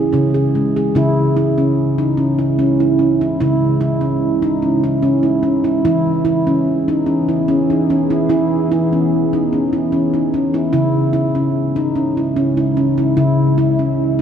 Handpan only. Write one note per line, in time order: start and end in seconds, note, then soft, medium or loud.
0.00 0.13 G#4 medium
0.13 0.79 C#3 medium
0.13 0.34 C#4 medium
0.34 0.54 G#4 medium
0.55 0.76 G#3 medium
0.76 0.96 G#4 medium
0.95 2.26 C#3 medium
0.95 1.35 E4 medium
1.37 1.58 E4 medium
1.58 1.98 C#4 medium
1.98 2.18 D#4 medium
2.17 2.39 C#4 medium
2.39 2.58 E4 medium
2.59 2.80 C#4 medium
2.80 3.00 E4 medium
2.99 3.21 C#4 medium
3.21 3.39 E4 medium
3.40 4.72 C#3 medium
3.40 3.79 E4 medium
3.81 4.02 E4 medium
4.01 4.42 C#4 medium
4.42 4.62 D#4 medium
4.62 4.84 C#4 medium
4.84 5.03 E4 medium
5.03 5.24 C#4 medium
5.23 5.43 E4 medium
5.43 5.65 C#4 medium
5.64 5.84 E4 medium
5.85 7.15 E3 medium
5.85 6.24 E4 medium
6.25 6.47 E4 medium
6.47 6.88 C#4 medium
6.88 7.07 D#4 medium
7.06 7.28 C#4 medium
7.29 7.48 E4 medium
7.48 7.69 C#4 medium
7.70 7.89 D#4 medium
7.90 8.11 C#4 medium
8.10 8.29 E4 medium
8.29 9.60 E3 medium
8.29 8.70 E4 medium
8.72 8.92 E4 medium
8.93 9.33 C#4 medium
9.33 9.52 D#4 medium
9.53 9.73 C#4 medium
9.73 9.92 E4 medium
9.92 10.14 C#4 medium
10.14 10.33 D#4 medium
10.34 10.55 C#4 medium
10.54 10.72 E4 medium
10.73 12.04 C#3 medium
10.73 11.12 E4 medium
11.13 11.35 E4 medium
11.35 11.76 C#4 medium
11.76 11.96 D#4 medium
11.96 12.17 C#4 medium
12.17 12.37 E4 medium
12.36 12.58 C#4 medium
12.57 12.77 E4 medium
12.77 12.99 C#4 medium
12.98 13.16 E4 medium
13.17 14.22 C#3 medium
13.17 13.57 E4 medium
13.58 13.80 E4 medium
13.79 14.21 C#4 medium